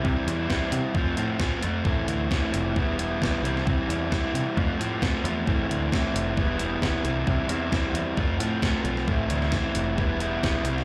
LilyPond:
<<
  \new Staff \with { instrumentName = "Overdriven electric guitar" } { \time 4/4 \key a \minor \tempo 4 = 133 <c e g c' e'>8 <g c' e'>8 <e g c' e'>4 <f a c' f'>8 <a c' f'>8 <f a c' f'>8 <a c' f'>8 | <a, e a c' e'>8 <a c' e'>8 <e a c' e'>4 <e g b e'>8 <g b e'>8 <e g b e'>8 <c e g c' e'>8 | <c e g c' e'>8 <g c' e'>8 <e g c' e'>4 <f a c' f'>8 <a c' f'>8 <f a c' f'>8 <a c' f'>8 | <a, e a c' e'>8 <a c' e'>8 <e a c' e'>4 <e g b e'>8 <g b e'>8 <e g b e'>8 <c e g c' e'>8 |
<c e g c' e'>8 <g c' e'>8 <e g c' e'>4 <f a c' f'>8 <a c' f'>8 <f a c' f'>8 <a c' f'>8 | <a, e a c' e'>8 <a c' e'>8 <e a c' e'>4 <e g b e'>8 <g b e'>8 <e g b e'>8 <c g c' e'>8 | }
  \new Staff \with { instrumentName = "Picked electric bass" } { \clef bass \time 4/4 \key a \minor c16 r16 e,8 r8 c16 r16 f,8 a,8 r8 f,8 | a,,8 d,8 r8 f,,8 e,,4 e,,16 r16 c,8 | c16 r16 e,8 r8 c16 r16 f,8 a,8 r8 e,8 | a,,8 d,8 r8 f,,8 e,,4 e,,16 r16 c,8 |
c16 r16 e,8 r8 e,16 r16 f,8 a,8 r8 b,,8 | a,,8 d,8 r8 f,,8 e,,4 e,,16 r16 c,8 | }
  \new DrumStaff \with { instrumentName = "Drums" } \drummode { \time 4/4 bd8 hh8 <bd sn>8 hh8 bd8 hh8 <bd sn>8 hh8 | bd8 hh8 <bd sn>8 hh8 bd8 hh8 <bd sn>8 hh16 sn16 | bd8 hh8 <bd sn>8 hh8 bd8 hh8 <bd sn>8 hh8 | bd8 hh8 <bd sn>8 hh8 bd8 hh8 <bd sn>8 hh8 |
bd8 hh8 <bd sn>8 hh8 bd8 hh8 <bd sn>8 hh16 sn16 | bd8 hh16 sn16 <bd sn>8 hh8 bd8 hh8 <bd sn>8 hh16 sn16 | }
>>